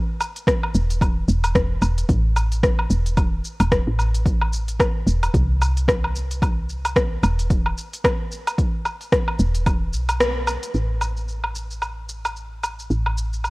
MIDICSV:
0, 0, Header, 1, 3, 480
1, 0, Start_track
1, 0, Key_signature, 0, "minor"
1, 0, Tempo, 540541
1, 1860, Time_signature, 4, 2, 24, 8
1, 11988, End_track
2, 0, Start_track
2, 0, Title_t, "FM bass"
2, 0, Program_c, 0, 39
2, 662, Note_on_c, 0, 28, 81
2, 1105, Note_off_c, 0, 28, 0
2, 1138, Note_on_c, 0, 28, 89
2, 1371, Note_off_c, 0, 28, 0
2, 1376, Note_on_c, 0, 28, 97
2, 1573, Note_off_c, 0, 28, 0
2, 1615, Note_on_c, 0, 28, 95
2, 1812, Note_off_c, 0, 28, 0
2, 1857, Note_on_c, 0, 33, 96
2, 2542, Note_off_c, 0, 33, 0
2, 2578, Note_on_c, 0, 28, 82
2, 3023, Note_off_c, 0, 28, 0
2, 3197, Note_on_c, 0, 28, 100
2, 3375, Note_off_c, 0, 28, 0
2, 3438, Note_on_c, 0, 33, 88
2, 4463, Note_off_c, 0, 33, 0
2, 4498, Note_on_c, 0, 28, 82
2, 4694, Note_off_c, 0, 28, 0
2, 4740, Note_on_c, 0, 36, 91
2, 6383, Note_off_c, 0, 36, 0
2, 6423, Note_on_c, 0, 28, 85
2, 6865, Note_off_c, 0, 28, 0
2, 8341, Note_on_c, 0, 28, 84
2, 8824, Note_on_c, 0, 35, 87
2, 8837, Note_off_c, 0, 28, 0
2, 9391, Note_off_c, 0, 35, 0
2, 9539, Note_on_c, 0, 33, 85
2, 11439, Note_off_c, 0, 33, 0
2, 11457, Note_on_c, 0, 33, 85
2, 11988, Note_off_c, 0, 33, 0
2, 11988, End_track
3, 0, Start_track
3, 0, Title_t, "Drums"
3, 181, Note_on_c, 9, 77, 78
3, 182, Note_on_c, 9, 82, 81
3, 270, Note_off_c, 9, 77, 0
3, 270, Note_off_c, 9, 82, 0
3, 320, Note_on_c, 9, 46, 52
3, 320, Note_on_c, 9, 82, 45
3, 408, Note_off_c, 9, 46, 0
3, 409, Note_off_c, 9, 82, 0
3, 416, Note_on_c, 9, 36, 101
3, 423, Note_on_c, 9, 37, 96
3, 423, Note_on_c, 9, 46, 41
3, 423, Note_on_c, 9, 82, 34
3, 505, Note_off_c, 9, 36, 0
3, 511, Note_off_c, 9, 37, 0
3, 511, Note_off_c, 9, 46, 0
3, 512, Note_off_c, 9, 82, 0
3, 561, Note_on_c, 9, 77, 74
3, 650, Note_off_c, 9, 77, 0
3, 660, Note_on_c, 9, 82, 82
3, 749, Note_off_c, 9, 82, 0
3, 801, Note_on_c, 9, 46, 52
3, 801, Note_on_c, 9, 82, 47
3, 889, Note_off_c, 9, 46, 0
3, 890, Note_off_c, 9, 82, 0
3, 897, Note_on_c, 9, 36, 111
3, 903, Note_on_c, 9, 46, 42
3, 903, Note_on_c, 9, 77, 76
3, 904, Note_on_c, 9, 82, 36
3, 986, Note_off_c, 9, 36, 0
3, 992, Note_off_c, 9, 46, 0
3, 992, Note_off_c, 9, 77, 0
3, 993, Note_off_c, 9, 82, 0
3, 1140, Note_on_c, 9, 82, 81
3, 1229, Note_off_c, 9, 82, 0
3, 1277, Note_on_c, 9, 46, 54
3, 1277, Note_on_c, 9, 77, 81
3, 1278, Note_on_c, 9, 82, 47
3, 1366, Note_off_c, 9, 46, 0
3, 1366, Note_off_c, 9, 77, 0
3, 1367, Note_off_c, 9, 82, 0
3, 1377, Note_on_c, 9, 36, 99
3, 1380, Note_on_c, 9, 37, 94
3, 1380, Note_on_c, 9, 46, 43
3, 1381, Note_on_c, 9, 82, 36
3, 1466, Note_off_c, 9, 36, 0
3, 1469, Note_off_c, 9, 37, 0
3, 1469, Note_off_c, 9, 46, 0
3, 1469, Note_off_c, 9, 82, 0
3, 1616, Note_on_c, 9, 77, 72
3, 1617, Note_on_c, 9, 82, 74
3, 1705, Note_off_c, 9, 77, 0
3, 1706, Note_off_c, 9, 82, 0
3, 1759, Note_on_c, 9, 46, 56
3, 1759, Note_on_c, 9, 82, 46
3, 1848, Note_off_c, 9, 46, 0
3, 1848, Note_off_c, 9, 82, 0
3, 1857, Note_on_c, 9, 36, 105
3, 1857, Note_on_c, 9, 46, 41
3, 1858, Note_on_c, 9, 82, 31
3, 1946, Note_off_c, 9, 36, 0
3, 1946, Note_off_c, 9, 46, 0
3, 1946, Note_off_c, 9, 82, 0
3, 2099, Note_on_c, 9, 77, 82
3, 2100, Note_on_c, 9, 82, 83
3, 2188, Note_off_c, 9, 77, 0
3, 2188, Note_off_c, 9, 82, 0
3, 2237, Note_on_c, 9, 46, 50
3, 2238, Note_on_c, 9, 82, 43
3, 2326, Note_off_c, 9, 46, 0
3, 2326, Note_off_c, 9, 82, 0
3, 2338, Note_on_c, 9, 36, 104
3, 2339, Note_on_c, 9, 37, 93
3, 2339, Note_on_c, 9, 46, 41
3, 2340, Note_on_c, 9, 82, 32
3, 2426, Note_off_c, 9, 36, 0
3, 2428, Note_off_c, 9, 37, 0
3, 2428, Note_off_c, 9, 46, 0
3, 2429, Note_off_c, 9, 82, 0
3, 2477, Note_on_c, 9, 77, 78
3, 2566, Note_off_c, 9, 77, 0
3, 2579, Note_on_c, 9, 82, 80
3, 2668, Note_off_c, 9, 82, 0
3, 2720, Note_on_c, 9, 46, 55
3, 2720, Note_on_c, 9, 82, 45
3, 2809, Note_off_c, 9, 46, 0
3, 2809, Note_off_c, 9, 82, 0
3, 2818, Note_on_c, 9, 46, 46
3, 2818, Note_on_c, 9, 77, 79
3, 2819, Note_on_c, 9, 36, 110
3, 2819, Note_on_c, 9, 82, 34
3, 2907, Note_off_c, 9, 36, 0
3, 2907, Note_off_c, 9, 46, 0
3, 2907, Note_off_c, 9, 77, 0
3, 2908, Note_off_c, 9, 82, 0
3, 3060, Note_on_c, 9, 82, 73
3, 3149, Note_off_c, 9, 82, 0
3, 3197, Note_on_c, 9, 46, 55
3, 3197, Note_on_c, 9, 77, 79
3, 3198, Note_on_c, 9, 82, 45
3, 3286, Note_off_c, 9, 46, 0
3, 3286, Note_off_c, 9, 77, 0
3, 3286, Note_off_c, 9, 82, 0
3, 3299, Note_on_c, 9, 36, 103
3, 3301, Note_on_c, 9, 37, 96
3, 3301, Note_on_c, 9, 46, 44
3, 3301, Note_on_c, 9, 82, 36
3, 3388, Note_off_c, 9, 36, 0
3, 3389, Note_off_c, 9, 37, 0
3, 3389, Note_off_c, 9, 46, 0
3, 3390, Note_off_c, 9, 82, 0
3, 3541, Note_on_c, 9, 77, 73
3, 3542, Note_on_c, 9, 82, 73
3, 3630, Note_off_c, 9, 77, 0
3, 3631, Note_off_c, 9, 82, 0
3, 3680, Note_on_c, 9, 46, 55
3, 3681, Note_on_c, 9, 82, 47
3, 3769, Note_off_c, 9, 46, 0
3, 3770, Note_off_c, 9, 82, 0
3, 3779, Note_on_c, 9, 36, 102
3, 3784, Note_on_c, 9, 46, 42
3, 3784, Note_on_c, 9, 82, 33
3, 3868, Note_off_c, 9, 36, 0
3, 3873, Note_off_c, 9, 46, 0
3, 3873, Note_off_c, 9, 82, 0
3, 3921, Note_on_c, 9, 77, 86
3, 4010, Note_off_c, 9, 77, 0
3, 4024, Note_on_c, 9, 82, 81
3, 4113, Note_off_c, 9, 82, 0
3, 4159, Note_on_c, 9, 46, 52
3, 4160, Note_on_c, 9, 82, 41
3, 4248, Note_off_c, 9, 46, 0
3, 4248, Note_off_c, 9, 82, 0
3, 4260, Note_on_c, 9, 36, 97
3, 4263, Note_on_c, 9, 37, 93
3, 4263, Note_on_c, 9, 46, 41
3, 4263, Note_on_c, 9, 77, 80
3, 4264, Note_on_c, 9, 82, 30
3, 4349, Note_off_c, 9, 36, 0
3, 4352, Note_off_c, 9, 37, 0
3, 4352, Note_off_c, 9, 46, 0
3, 4352, Note_off_c, 9, 77, 0
3, 4353, Note_off_c, 9, 82, 0
3, 4505, Note_on_c, 9, 82, 80
3, 4594, Note_off_c, 9, 82, 0
3, 4643, Note_on_c, 9, 46, 54
3, 4643, Note_on_c, 9, 77, 81
3, 4644, Note_on_c, 9, 82, 42
3, 4732, Note_off_c, 9, 46, 0
3, 4732, Note_off_c, 9, 77, 0
3, 4732, Note_off_c, 9, 82, 0
3, 4741, Note_on_c, 9, 36, 100
3, 4744, Note_on_c, 9, 46, 49
3, 4745, Note_on_c, 9, 82, 33
3, 4830, Note_off_c, 9, 36, 0
3, 4833, Note_off_c, 9, 46, 0
3, 4833, Note_off_c, 9, 82, 0
3, 4986, Note_on_c, 9, 77, 85
3, 4987, Note_on_c, 9, 82, 76
3, 5075, Note_off_c, 9, 77, 0
3, 5076, Note_off_c, 9, 82, 0
3, 5123, Note_on_c, 9, 46, 57
3, 5124, Note_on_c, 9, 82, 42
3, 5212, Note_off_c, 9, 46, 0
3, 5213, Note_off_c, 9, 82, 0
3, 5221, Note_on_c, 9, 36, 96
3, 5225, Note_on_c, 9, 37, 104
3, 5225, Note_on_c, 9, 46, 47
3, 5226, Note_on_c, 9, 82, 33
3, 5310, Note_off_c, 9, 36, 0
3, 5314, Note_off_c, 9, 37, 0
3, 5314, Note_off_c, 9, 46, 0
3, 5315, Note_off_c, 9, 82, 0
3, 5364, Note_on_c, 9, 77, 80
3, 5453, Note_off_c, 9, 77, 0
3, 5466, Note_on_c, 9, 82, 78
3, 5555, Note_off_c, 9, 82, 0
3, 5604, Note_on_c, 9, 46, 57
3, 5604, Note_on_c, 9, 82, 44
3, 5693, Note_off_c, 9, 46, 0
3, 5693, Note_off_c, 9, 82, 0
3, 5702, Note_on_c, 9, 36, 100
3, 5707, Note_on_c, 9, 46, 44
3, 5707, Note_on_c, 9, 77, 80
3, 5708, Note_on_c, 9, 82, 33
3, 5790, Note_off_c, 9, 36, 0
3, 5796, Note_off_c, 9, 46, 0
3, 5796, Note_off_c, 9, 77, 0
3, 5796, Note_off_c, 9, 82, 0
3, 5945, Note_on_c, 9, 82, 73
3, 6034, Note_off_c, 9, 82, 0
3, 6084, Note_on_c, 9, 46, 55
3, 6084, Note_on_c, 9, 77, 77
3, 6084, Note_on_c, 9, 82, 42
3, 6173, Note_off_c, 9, 46, 0
3, 6173, Note_off_c, 9, 77, 0
3, 6173, Note_off_c, 9, 82, 0
3, 6181, Note_on_c, 9, 36, 96
3, 6184, Note_on_c, 9, 37, 100
3, 6184, Note_on_c, 9, 46, 46
3, 6185, Note_on_c, 9, 82, 31
3, 6270, Note_off_c, 9, 36, 0
3, 6273, Note_off_c, 9, 37, 0
3, 6273, Note_off_c, 9, 46, 0
3, 6274, Note_off_c, 9, 82, 0
3, 6424, Note_on_c, 9, 77, 85
3, 6425, Note_on_c, 9, 82, 76
3, 6513, Note_off_c, 9, 77, 0
3, 6513, Note_off_c, 9, 82, 0
3, 6563, Note_on_c, 9, 46, 58
3, 6564, Note_on_c, 9, 82, 42
3, 6652, Note_off_c, 9, 46, 0
3, 6653, Note_off_c, 9, 82, 0
3, 6662, Note_on_c, 9, 36, 104
3, 6663, Note_on_c, 9, 46, 48
3, 6664, Note_on_c, 9, 82, 33
3, 6750, Note_off_c, 9, 36, 0
3, 6752, Note_off_c, 9, 46, 0
3, 6753, Note_off_c, 9, 82, 0
3, 6801, Note_on_c, 9, 77, 80
3, 6890, Note_off_c, 9, 77, 0
3, 6905, Note_on_c, 9, 82, 73
3, 6994, Note_off_c, 9, 82, 0
3, 7044, Note_on_c, 9, 46, 57
3, 7045, Note_on_c, 9, 82, 45
3, 7133, Note_off_c, 9, 46, 0
3, 7134, Note_off_c, 9, 82, 0
3, 7141, Note_on_c, 9, 36, 99
3, 7144, Note_on_c, 9, 37, 102
3, 7144, Note_on_c, 9, 46, 44
3, 7144, Note_on_c, 9, 77, 88
3, 7144, Note_on_c, 9, 82, 31
3, 7230, Note_off_c, 9, 36, 0
3, 7232, Note_off_c, 9, 37, 0
3, 7232, Note_off_c, 9, 46, 0
3, 7232, Note_off_c, 9, 77, 0
3, 7233, Note_off_c, 9, 82, 0
3, 7384, Note_on_c, 9, 82, 76
3, 7473, Note_off_c, 9, 82, 0
3, 7523, Note_on_c, 9, 46, 63
3, 7523, Note_on_c, 9, 77, 83
3, 7524, Note_on_c, 9, 82, 45
3, 7612, Note_off_c, 9, 46, 0
3, 7612, Note_off_c, 9, 77, 0
3, 7612, Note_off_c, 9, 82, 0
3, 7620, Note_on_c, 9, 36, 100
3, 7624, Note_on_c, 9, 46, 48
3, 7624, Note_on_c, 9, 82, 31
3, 7709, Note_off_c, 9, 36, 0
3, 7712, Note_off_c, 9, 46, 0
3, 7713, Note_off_c, 9, 82, 0
3, 7861, Note_on_c, 9, 77, 91
3, 7861, Note_on_c, 9, 82, 77
3, 7950, Note_off_c, 9, 77, 0
3, 7950, Note_off_c, 9, 82, 0
3, 7999, Note_on_c, 9, 46, 55
3, 7999, Note_on_c, 9, 82, 44
3, 8087, Note_off_c, 9, 46, 0
3, 8088, Note_off_c, 9, 82, 0
3, 8100, Note_on_c, 9, 36, 103
3, 8101, Note_on_c, 9, 37, 102
3, 8101, Note_on_c, 9, 46, 44
3, 8102, Note_on_c, 9, 82, 31
3, 8189, Note_off_c, 9, 36, 0
3, 8190, Note_off_c, 9, 37, 0
3, 8190, Note_off_c, 9, 46, 0
3, 8191, Note_off_c, 9, 82, 0
3, 8238, Note_on_c, 9, 77, 85
3, 8327, Note_off_c, 9, 77, 0
3, 8339, Note_on_c, 9, 82, 75
3, 8428, Note_off_c, 9, 82, 0
3, 8476, Note_on_c, 9, 46, 56
3, 8477, Note_on_c, 9, 82, 45
3, 8565, Note_off_c, 9, 46, 0
3, 8566, Note_off_c, 9, 82, 0
3, 8580, Note_on_c, 9, 36, 102
3, 8581, Note_on_c, 9, 46, 51
3, 8581, Note_on_c, 9, 77, 87
3, 8581, Note_on_c, 9, 82, 35
3, 8669, Note_off_c, 9, 36, 0
3, 8669, Note_off_c, 9, 46, 0
3, 8669, Note_off_c, 9, 77, 0
3, 8670, Note_off_c, 9, 82, 0
3, 8819, Note_on_c, 9, 82, 79
3, 8908, Note_off_c, 9, 82, 0
3, 8958, Note_on_c, 9, 46, 58
3, 8958, Note_on_c, 9, 77, 84
3, 8959, Note_on_c, 9, 82, 42
3, 9047, Note_off_c, 9, 46, 0
3, 9047, Note_off_c, 9, 77, 0
3, 9048, Note_off_c, 9, 82, 0
3, 9061, Note_on_c, 9, 37, 105
3, 9061, Note_on_c, 9, 46, 45
3, 9062, Note_on_c, 9, 82, 31
3, 9150, Note_off_c, 9, 37, 0
3, 9150, Note_off_c, 9, 46, 0
3, 9150, Note_off_c, 9, 82, 0
3, 9299, Note_on_c, 9, 77, 81
3, 9299, Note_on_c, 9, 82, 73
3, 9387, Note_off_c, 9, 77, 0
3, 9388, Note_off_c, 9, 82, 0
3, 9437, Note_on_c, 9, 46, 61
3, 9438, Note_on_c, 9, 82, 45
3, 9526, Note_off_c, 9, 46, 0
3, 9527, Note_off_c, 9, 82, 0
3, 9537, Note_on_c, 9, 82, 27
3, 9626, Note_off_c, 9, 82, 0
3, 9777, Note_on_c, 9, 77, 69
3, 9777, Note_on_c, 9, 82, 66
3, 9866, Note_off_c, 9, 77, 0
3, 9866, Note_off_c, 9, 82, 0
3, 9917, Note_on_c, 9, 82, 36
3, 10006, Note_off_c, 9, 82, 0
3, 10018, Note_on_c, 9, 82, 28
3, 10107, Note_off_c, 9, 82, 0
3, 10155, Note_on_c, 9, 77, 67
3, 10244, Note_off_c, 9, 77, 0
3, 10257, Note_on_c, 9, 82, 66
3, 10346, Note_off_c, 9, 82, 0
3, 10394, Note_on_c, 9, 82, 38
3, 10483, Note_off_c, 9, 82, 0
3, 10494, Note_on_c, 9, 77, 67
3, 10495, Note_on_c, 9, 82, 30
3, 10583, Note_off_c, 9, 77, 0
3, 10583, Note_off_c, 9, 82, 0
3, 10736, Note_on_c, 9, 82, 65
3, 10825, Note_off_c, 9, 82, 0
3, 10878, Note_on_c, 9, 77, 68
3, 10879, Note_on_c, 9, 82, 38
3, 10967, Note_off_c, 9, 77, 0
3, 10968, Note_off_c, 9, 82, 0
3, 10979, Note_on_c, 9, 82, 29
3, 11068, Note_off_c, 9, 82, 0
3, 11218, Note_on_c, 9, 77, 67
3, 11219, Note_on_c, 9, 82, 66
3, 11307, Note_off_c, 9, 77, 0
3, 11308, Note_off_c, 9, 82, 0
3, 11359, Note_on_c, 9, 82, 40
3, 11448, Note_off_c, 9, 82, 0
3, 11460, Note_on_c, 9, 82, 29
3, 11549, Note_off_c, 9, 82, 0
3, 11598, Note_on_c, 9, 77, 65
3, 11687, Note_off_c, 9, 77, 0
3, 11700, Note_on_c, 9, 82, 72
3, 11789, Note_off_c, 9, 82, 0
3, 11840, Note_on_c, 9, 82, 37
3, 11929, Note_off_c, 9, 82, 0
3, 11937, Note_on_c, 9, 77, 59
3, 11938, Note_on_c, 9, 82, 30
3, 11988, Note_off_c, 9, 77, 0
3, 11988, Note_off_c, 9, 82, 0
3, 11988, End_track
0, 0, End_of_file